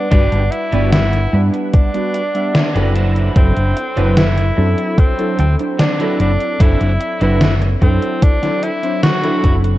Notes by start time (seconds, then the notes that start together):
Already playing: G3 D4 B4 F#5
0.11 G1 G3 B3 D4 F#4 G4 B4, kick, closed hi-hat
0.32 G1, closed hi-hat
0.51 E4, closed hi-hat
0.72 G1 G3 B3 D4 F#4 G4 B4 D5, closed hi-hat
0.92 E4, snare, closed hi-hat
1.13 closed hi-hat
1.33 G2 G3 B3 D4 B4 F#5, muted clean electric guitar stroke
1.53 muted clean electric guitar stroke, closed hi-hat
1.73 D4, kick, closed hi-hat
1.94 G3 B3 D4 F#4 B4, closed hi-hat
2.14 closed hi-hat
2.34 G3 B3 D4 E5 F#5, closed hi-hat
2.54 muted clean electric guitar stroke, snare, closed hi-hat
2.75 F#1 F#3 C4 D4 E4 F#4 G4 A4 B4, closed hi-hat
2.95 F#3 C4 D4 E4 F#4 A4 C5, closed hi-hat
3.16 closed hi-hat
3.35 F#1 F#3 C4 D4 E4 A4, kick, closed hi-hat
3.57 F#1, closed hi-hat
3.77 closed hi-hat
3.96 F#1 F#3 C4 D4 E4 F#4 B4, closed hi-hat
4.17 E4, snare, closed hi-hat
4.38 closed hi-hat
4.57 F#2 F#3 C4 D4 E4 A4, muted clean electric guitar stroke
4.77 muted clean electric guitar stroke, closed hi-hat
4.98 C4, kick, closed hi-hat
5.18 F#3 C4 D4 E4 A4, closed hi-hat
5.39 D2 C4, closed hi-hat
5.59 F#3 C4 D4 E4 C5, closed hi-hat
5.79 D4, muted clean electric guitar stroke, snare, closed hi-hat
5.99 F#3 C4 D4 E4 F#4 A4 B4, closed hi-hat
6.19 F#1 D4, closed hi-hat
6.40 closed hi-hat
6.60 F#1 F#3 C4 D4 E4 F#4 A4 C5, kick, closed hi-hat
6.81 F#1, closed hi-hat
7.01 closed hi-hat
7.20 F#1 F#3 C4 D4 E4 F#4 B4 C5, closed hi-hat
7.41 snare, closed hi-hat
7.62 closed hi-hat
7.81 F#2 F#3 C4 D4 E4 A4, muted clean electric guitar stroke, kick, closed hi-hat
8.02 muted clean electric guitar stroke, closed hi-hat
8.22 D4, kick, closed hi-hat
8.42 F#3 C4 D4 E4 A4, snare, closed hi-hat
8.63 E4, closed hi-hat
8.82 F#3 C4 D4 E4 C5, closed hi-hat
9.03 F#4, muted clean electric guitar stroke, snare, closed hi-hat
9.23 F#3 C4 D4 E4 F#4 A4 C5, closed hi-hat
9.44 F#1, kick, closed hi-hat
9.64 closed hi-hat